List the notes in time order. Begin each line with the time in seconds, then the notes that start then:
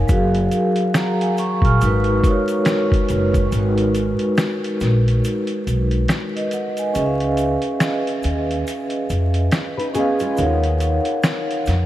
Already playing: D#4 A#4 C#5 F5 G#5
0.07 F#1 F#3 F#4 G#4, kick, closed hi-hat, shaker
0.12 A#4 F5
0.35 closed hi-hat
0.52 closed hi-hat, shaker
0.76 closed hi-hat
0.94 F#5 A#5, finger snap, snare, closed hi-hat, shaker
1.21 F5 G#5, closed hi-hat
1.37 A#5 C#6, closed hi-hat, shaker
1.62 A#1 C#6 F6, kick, closed hi-hat
1.80 G#1 G#3 D#4 F#4, closed hi-hat, shaker
1.84 A#4 B4
2.04 closed hi-hat
2.22 G#3 D#4 F#4, kick, closed hi-hat, shaker
2.27 A#4 C#5
2.48 closed hi-hat, shaker
2.65 finger snap, snare, closed hi-hat, shaker
2.92 kick, closed hi-hat
3.09 F#1, closed hi-hat, shaker
3.34 kick, closed hi-hat, shaker
3.51 G#1 G#3 D#4 F#4, closed hi-hat, shaker
3.55 A#4 B4
3.78 closed hi-hat
3.95 closed hi-hat, shaker
4.19 closed hi-hat
4.38 finger snap, snare, closed hi-hat, shaker
4.64 closed hi-hat
4.80 A#1, snare, closed hi-hat, shaker
5.08 closed hi-hat
5.24 closed hi-hat, shaker
5.47 closed hi-hat
5.67 B1, closed hi-hat, shaker
5.91 closed hi-hat
6.08 finger snap, snare, closed hi-hat, shaker
6.36 B4 D#5, closed hi-hat
6.51 D#5 F#5, closed hi-hat, shaker
6.77 G#5, closed hi-hat, shaker
6.93 C#2 C#4 G#4 B4, closed hi-hat, shaker
6.98 D#5 E5
7.06 F5
7.20 closed hi-hat
7.37 closed hi-hat, shaker
7.62 closed hi-hat
7.80 finger snap, snare, closed hi-hat, shaker
8.07 closed hi-hat
8.23 D#2, closed hi-hat, shaker
8.51 closed hi-hat
8.67 closed hi-hat, shaker
8.90 closed hi-hat
9.10 F2, closed hi-hat, shaker
9.34 closed hi-hat
9.51 finger snap, snare, closed hi-hat, shaker
9.78 D#4 B4, closed hi-hat
9.94 B3 C#4 G#4 B4, closed hi-hat, shaker
9.98 D#5 F5
10.19 G#3 F4, closed hi-hat, shaker
10.36 D#2 D#4 A#4 C#5, closed hi-hat, shaker
10.41 F5 F#5
10.63 closed hi-hat
10.80 closed hi-hat, shaker
11.05 closed hi-hat
11.23 finger snap, snare, closed hi-hat, shaker
11.51 closed hi-hat
11.66 F2, snare, closed hi-hat, shaker